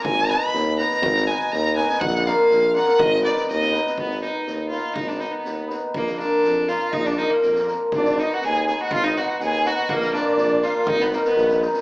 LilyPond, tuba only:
\new Staff \with { instrumentName = "Tuba" } { \clef bass \time 2/4 \tempo 4 = 122 aes,,4 ees,4 | aes,,4 ees,4 | bes,,4 bes,,4 | aes,,4 ees,4 |
aes,,4 ees,4 | aes,,4 ees,4 | bes,,4 f,4 | bes,,4 f,4 |
aes,,4 ees,4 | aes,,4 ees,4 | bes,,4 bes,,4 | aes,,4 bes,,4 | }